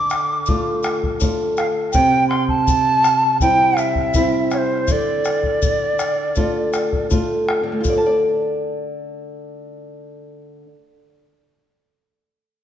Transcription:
0.00 1.91 D3 medium
0.00 0.98 D6 medium
0.10 bombo rim medium
0.10 shaker medium
0.46 1.19 A3 medium
0.46 1.19 D4 soft
0.46 1.19 F4 medium
0.46 bombo low medium
0.46 shaker medium
0.83 bombo rim medium
0.83 shaker medium
1.03 bombo low medium
1.20 1.92 A3 soft
1.20 1.92 D4 soft
1.20 1.92 F4 medium
1.20 bombo low medium
1.20 shaker loud
1.57 1.66 F5 loud
1.57 bombo rim medium
1.57 shaker medium
1.92 4.85 C3 medium
1.92 2.28 G5 loud
1.92 bombo low medium
1.92 shaker medium
2.29 2.47 C6 medium
2.29 bombo rim soft
2.48 3.37 A5 loud
2.48 bombo low medium
2.68 bombo low medium
2.68 shaker medium
3.04 bombo rim medium
3.04 shaker medium
3.40 4.13 G3 medium
3.40 4.13 C4 soft
3.40 4.13 E4 medium
3.40 3.80 G5 loud
3.40 bombo low medium
3.40 shaker loud
3.77 4.52 E5 loud
3.77 bombo rim medium
3.77 shaker medium
3.95 bombo low medium
4.14 4.87 G3 soft
4.14 4.87 C4 soft
4.14 4.87 E4 medium
4.14 bombo low medium
4.14 shaker loud
4.51 4.59 C#5 medium
4.51 bombo rim medium
4.51 shaker medium
4.58 4.93 C5 medium
4.87 7.62 D3 medium
4.87 bombo low medium
4.87 shaker loud
4.92 7.12 D5 medium
5.25 bombo rim medium
5.25 shaker medium
5.43 bombo low medium
5.62 bombo low medium
5.62 shaker medium
5.99 bombo rim medium
5.99 shaker medium
6.36 7.08 A3 medium
6.36 7.08 D4 soft
6.36 7.09 F4 medium
6.36 bombo low medium
6.36 shaker medium
6.73 bombo rim medium
6.73 shaker medium
6.93 bombo low medium
7.10 7.71 A3 soft
7.10 7.80 D4 soft
7.10 7.79 F4 medium
7.10 bombo low medium
7.10 shaker medium
7.49 bombo rim medium
7.63 10.64 D3 medium
7.72 10.73 A3 soft
7.81 8.06 F4 medium
7.81 shaker medium
7.85 bombo low medium
7.90 7.97 D5 medium
7.98 10.98 A5 medium
8.06 11.07 D5 medium

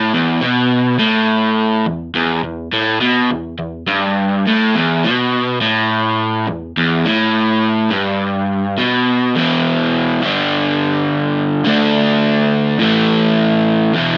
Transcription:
0.00 0.12 A2 medium
0.14 0.41 E2 loud
0.41 0.99 B2 loud
0.99 1.85 A2 loud
1.86 2.09 E2 medium
2.15 2.43 E2 loud
2.44 2.67 E2 medium
2.73 3.00 A2 medium
3.01 3.29 B2 loud
3.31 3.54 E2 medium
3.58 3.82 E2 medium
3.87 4.45 G2 loud
4.47 4.75 A2 loud
4.75 5.04 E2 loud
5.04 5.61 B2 loud
5.61 6.48 A2 loud
6.47 6.71 E2 medium
6.77 7.06 E2 loud
7.06 7.92 A2 loud
7.91 8.77 G2 loud
8.78 9.35 B2 loud
9.35 10.20 E2 medium
9.35 10.22 B2 loud
9.41 10.23 E3 loud
10.21 11.63 G2 medium
10.21 11.63 D3 loud
10.25 11.65 G3 loud
11.64 12.78 D3 loud
11.64 12.79 A3 loud
11.69 12.80 D4 loud
12.79 13.92 A2 medium
12.79 13.93 E3 loud
12.84 13.94 A3 loud
13.94 14.18 E2 loud
13.94 14.18 B2 medium
13.98 14.18 E3 loud

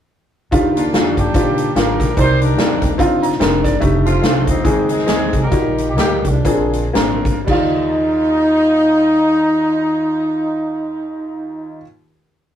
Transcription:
0.51 0.87 D#2 medium
0.51 0.92 D#3 medium
0.51 0.84 D4 medium
0.51 0.85 D#4 medium
0.51 0.85 F4 medium
0.51 0.85 G4 medium
0.51 kick medium
0.51 closed hi-hat medium
0.76 1.17 A#3 medium
0.76 1.17 D4 medium
0.76 1.15 F4 medium
0.76 closed hi-hat medium
0.93 1.14 F2 medium
0.93 1.26 D#3 medium
0.93 1.26 D4 medium
0.93 1.26 F4 medium
0.93 1.00 F#4 soft
0.93 snare loud
0.93 closed hi-hat medium
1.00 1.29 G4 medium
1.17 1.32 G2 medium
1.17 1.96 A#3 medium
1.17 1.75 D4 medium
1.17 1.75 G4 medium
1.17 kick medium
1.17 closed hi-hat medium
1.34 1.69 A#2 medium
1.34 1.67 D#3 medium
1.34 1.67 D4 medium
1.34 1.67 F4 medium
1.34 1.68 G4 medium
1.34 kick medium
1.34 closed hi-hat medium
1.58 closed hi-hat medium
1.75 1.96 G#1 medium
1.75 2.08 D#3 medium
1.75 2.08 D4 medium
1.75 2.15 D4 medium
1.75 2.09 F4 medium
1.75 2.14 G4 medium
1.75 2.09 A#4 medium
1.75 2.18 A#4 medium
1.75 snare medium
1.75 closed hi-hat medium
2.00 2.15 A#1 medium
2.00 kick medium
2.00 snare soft
2.00 closed hi-hat medium
2.17 2.58 C2 medium
2.17 2.78 C3 soft
2.17 2.49 C4 medium
2.17 2.39 D#4 medium
2.17 2.50 D#4 medium
2.17 2.96 G4 medium
2.17 2.23 A4 medium
2.17 2.42 C5 loud
2.17 2.50 D5 medium
2.17 kick medium
2.17 closed hi-hat medium
2.23 2.53 A#4 medium
2.41 3.19 D4 medium
2.41 3.19 D#4 medium
2.41 3.24 A#4 medium
2.41 closed hi-hat medium
2.57 2.79 D#2 medium
2.57 2.91 D#3 medium
2.57 2.90 C4 medium
2.57 2.91 A#4 medium
2.57 2.90 D5 medium
2.57 snare loud
2.57 closed hi-hat medium
2.82 2.97 D2 medium
2.82 kick medium
2.82 closed hi-hat medium
2.98 3.34 G1 medium
2.98 3.31 C4 medium
2.98 3.32 D4 medium
2.98 3.32 D#4 medium
2.98 3.32 F4 medium
2.98 kick medium
2.98 closed hi-hat medium
3.23 3.39 A#5 medium
3.23 closed hi-hat medium
3.32 snare soft
3.40 3.64 F1 medium
3.40 3.73 C4 medium
3.40 3.73 D4 medium
3.40 3.73 D#4 medium
3.40 3.73 A#4 medium
3.40 3.63 G5 medium
3.40 snare medium
3.40 closed hi-hat medium
3.64 3.79 G1 medium
3.64 3.80 D5 medium
3.64 kick medium
3.64 snare soft
3.64 closed hi-hat medium
3.80 4.17 F1 loud
3.80 4.14 A3 medium
3.80 4.14 D4 medium
3.80 4.14 D#4 medium
3.80 4.14 G4 medium
3.80 kick medium
3.80 closed hi-hat medium
4.05 4.61 A3 medium
4.05 4.47 C4 medium
4.05 4.44 F4 medium
4.05 closed hi-hat medium
4.22 4.43 C2 medium
4.22 4.55 A3 medium
4.22 4.56 D4 medium
4.22 4.56 D#4 medium
4.22 4.56 F4 medium
4.22 snare medium
4.22 closed hi-hat medium
4.47 4.62 D2 medium
4.47 4.88 C4 medium
4.47 4.88 D#4 medium
4.47 4.90 G4 medium
4.47 kick medium
4.47 closed hi-hat medium
4.64 5.01 D#2 medium
4.64 5.29 D#3 medium
4.64 4.98 G#3 medium
4.64 4.98 C4 medium
4.64 4.98 D#4 medium
4.64 4.99 G#4 medium
4.64 kick loud
4.64 closed hi-hat medium
4.89 5.48 C4 medium
4.89 5.42 D#4 medium
4.89 5.42 G#4 medium
4.89 closed hi-hat medium
4.98 snare soft
5.06 5.29 D2 medium
5.06 5.42 G#3 medium
5.06 5.42 C4 medium
5.06 5.42 D#4 medium
5.06 5.42 G#4 medium
5.06 snare medium
5.06 closed hi-hat medium
5.33 5.49 C2 medium
5.33 kick medium
5.33 closed hi-hat medium
5.42 6.31 D#4 medium
5.42 5.88 G4 medium
5.42 5.84 A#4 medium
5.50 5.98 A#1 medium
5.50 6.20 A#2 medium
5.50 5.87 G3 medium
5.50 5.87 A#3 medium
5.50 5.87 D#4 medium
5.50 5.58 F#4 medium
5.50 kick medium
5.50 closed hi-hat medium
5.57 5.90 G4 medium
5.78 closed hi-hat medium
5.89 5.97 G4 medium
5.96 6.20 D2 medium
5.96 6.34 G3 medium
5.96 6.34 A#3 medium
5.96 6.35 D#4 soft
5.96 6.35 G4 medium
5.96 6.23 G4 medium
5.96 snare medium
5.96 closed hi-hat medium
6.24 6.42 C2 medium
6.24 7.22 F3 medium
6.24 7.22 G#3 medium
6.24 6.96 D4 medium
6.24 kick medium
6.24 closed hi-hat medium
6.45 6.87 A#1 medium
6.45 7.21 A#2 medium
6.45 6.84 A#3 medium
6.45 6.84 C4 medium
6.45 6.84 D4 medium
6.45 6.85 G#4 medium
6.45 kick medium
6.45 closed hi-hat medium
6.73 closed hi-hat medium
6.93 7.40 G#1 medium
6.93 7.36 A#3 medium
6.93 7.36 C4 medium
6.93 7.36 D4 medium
6.93 7.37 A#4 medium
6.93 snare medium
6.93 closed hi-hat medium
7.25 kick medium
7.25 closed hi-hat medium
7.45 11.80 D#2 medium
7.45 11.81 D#2 medium
7.45 11.77 G3 medium
7.45 11.81 D#4 medium
7.45 11.79 D5 medium
7.45 kick medium
7.45 crash medium
7.49 11.82 D#4 medium
7.49 11.84 F4 medium

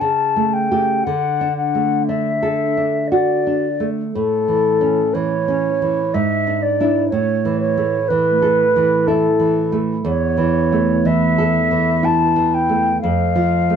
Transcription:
0.00 1.03 C#3 soft
0.00 0.55 A5 medium
0.36 0.70 A3 soft
0.54 1.06 G5 soft
0.71 1.03 A3 soft
0.71 1.03 G4 soft
1.04 4.10 D3 soft
1.04 1.57 F#5 soft
1.41 1.96 D4 soft
1.57 2.07 F#5 soft
1.75 2.29 A3 soft
2.07 2.63 D4 soft
2.07 3.09 E5 medium
2.43 2.97 A4 soft
2.77 3.32 D4 soft
3.11 3.67 F#4 soft
3.11 3.87 D5 soft
3.47 4.01 D4 soft
3.80 4.14 A3 soft
4.13 6.10 A2 soft
4.13 5.15 A4 medium
4.48 5.01 E3 soft
4.81 5.34 C#4 soft
5.14 5.68 E3 soft
5.14 6.16 C#5 medium
5.48 6.01 C#4 soft
5.82 6.14 E3 soft
6.14 7.08 G#2 soft
6.14 6.64 E5 medium
6.47 6.79 D4 soft
6.62 7.09 D5 soft
6.80 7.08 D4 soft
6.80 7.09 E4 soft
7.09 10.01 A2 soft
7.09 7.58 C#5 medium
7.45 7.96 E3 soft
7.61 8.10 C#5 medium
7.78 8.29 A3 soft
8.08 8.62 E3 soft
8.08 9.09 B4 medium
8.42 8.94 A4 soft
8.76 9.27 E3 soft
9.07 9.59 E4 soft
9.07 9.80 A4 medium
9.40 9.92 E3 soft
9.72 10.05 A3 soft
10.05 12.98 E2 soft
10.05 11.08 C#5 medium
10.37 10.91 E3 soft
10.72 11.26 A3 soft
11.05 11.58 E3 soft
11.05 12.06 E5 medium
11.38 11.90 A4 soft
11.71 12.23 E3 soft
12.03 12.55 E4 soft
12.03 12.56 A5 medium
12.36 12.88 E3 soft
12.54 13.01 G5 medium
12.69 13.02 A3 soft
13.01 13.76 F2 medium
13.01 13.76 F5 medium
13.36 13.76 F3 soft
13.70 13.76 A3 soft

